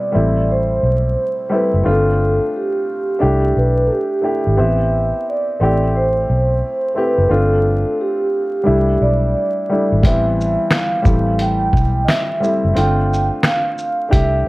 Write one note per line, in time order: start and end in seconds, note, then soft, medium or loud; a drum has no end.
0.00 0.10 G3 medium
0.00 0.15 B3 medium
0.00 0.12 C4 medium
0.00 0.13 E4 medium
0.00 0.52 D5 medium
0.12 0.80 A1 loud
0.12 1.41 G3 medium
0.12 1.41 A3 medium
0.12 1.42 C4 medium
0.12 1.42 E4 medium
0.52 1.55 C5 medium
0.83 1.15 B1 medium
1.50 1.82 G3 medium
1.50 1.82 A3 medium
1.50 1.83 C4 medium
1.50 1.84 E4 medium
1.55 1.85 B4 medium
1.74 1.85 F#1 medium
1.83 2.39 G1 loud
1.83 3.12 A3 medium
1.83 3.12 C4 medium
1.83 3.12 D4 medium
1.83 3.13 F4 medium
1.89 2.57 A4 medium
2.56 3.53 G4 medium
3.19 3.54 C2 loud
3.19 4.16 A3 medium
3.19 4.16 D4 medium
3.19 4.16 E4 medium
3.19 4.17 G4 medium
3.56 3.88 B1 medium
3.56 3.87 B4 medium
3.86 3.91 A4 medium
3.92 4.61 G4 medium
4.21 4.54 A3 medium
4.21 4.55 D4 medium
4.21 4.55 E4 medium
4.21 4.56 G4 medium
4.47 4.58 G#1 medium
4.57 5.11 A1 loud
4.57 5.60 B3 medium
4.57 5.59 C4 medium
4.57 5.60 E4 medium
4.57 5.61 G4 medium
4.57 5.23 E5 loud
5.29 5.92 D5 medium
5.60 6.25 A1 loud
5.60 6.87 A3 medium
5.60 6.88 C4 medium
5.60 6.88 E4 medium
5.60 6.89 G4 medium
5.96 7.00 C5 medium
6.29 6.61 B1 medium
6.95 7.27 A3 medium
6.95 7.28 C4 medium
6.95 7.29 E4 medium
6.95 7.29 G4 medium
6.95 7.33 B4 medium
7.18 7.30 F#1 medium
7.29 7.83 G1 loud
7.29 8.57 A3 medium
7.29 8.57 C4 medium
7.29 8.58 D4 medium
7.29 8.58 F4 medium
7.29 7.96 A4 medium
8.01 8.98 G4 medium
8.64 9.61 G3 medium
8.64 9.61 A3 medium
8.64 9.62 D4 medium
8.64 9.62 E4 medium
8.68 9.00 C2 medium
9.02 9.34 B1 medium
9.02 10.07 D5 medium
9.69 10.01 G3 medium
9.69 10.02 A3 medium
9.69 10.02 D4 medium
9.69 10.03 E4 medium
9.92 10.03 G#1 medium
10.03 10.56 A1 medium
10.03 11.04 E3 medium
10.03 11.01 G3 medium
10.03 11.06 B3 medium
10.03 11.03 C4 medium
10.03 10.75 E5 loud
10.03 kick loud
10.03 closed hi-hat medium
10.41 shaker soft
10.71 finger snap loud
10.71 snare loud
10.71 closed hi-hat medium
11.03 11.70 A1 loud
11.03 12.33 E3 medium
11.03 12.32 G3 medium
11.03 12.32 A3 medium
11.03 12.33 C4 medium
11.03 kick loud
11.03 shaker soft
11.39 12.06 G5 loud
11.39 closed hi-hat medium
11.73 12.06 B1 medium
11.73 kick loud
11.73 shaker soft
12.04 12.09 D#5 medium
12.04 12.72 E5 loud
12.04 snare loud
12.09 finger snap medium
12.09 closed hi-hat medium
12.40 12.73 G3 medium
12.40 12.72 A3 medium
12.40 12.73 C4 medium
12.40 12.74 E4 medium
12.40 shaker soft
12.65 12.76 F#1 medium
12.73 13.29 G1 loud
12.73 14.02 A3 medium
12.73 14.03 C4 medium
12.73 14.03 D4 medium
12.73 14.04 F4 medium
12.73 closed hi-hat medium
12.78 13.47 G5 loud
13.14 shaker soft
13.43 14.09 F5 loud
13.43 finger snap loud
13.43 snare loud
13.43 closed hi-hat medium
13.78 shaker soft
14.09 14.48 A3 medium
14.09 14.48 D4 medium
14.09 14.48 E4 medium
14.09 14.48 G4 medium
14.09 14.48 E5 medium
14.09 kick loud
14.09 closed hi-hat medium
14.13 14.45 C2 loud